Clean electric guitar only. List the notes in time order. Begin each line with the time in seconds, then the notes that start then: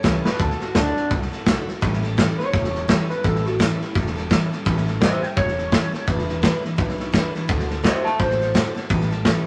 Already playing: C#5
0.26 B4
0.40 A4
0.61 F#4
0.76 D4
2.39 C#5
3.10 B4
3.25 A4
3.46 F#4
3.60 E4
5.01 C5 E5
5.22 E5 G5
5.37 C#5
7.84 C5 E5
8.04 E5 A5
8.19 C5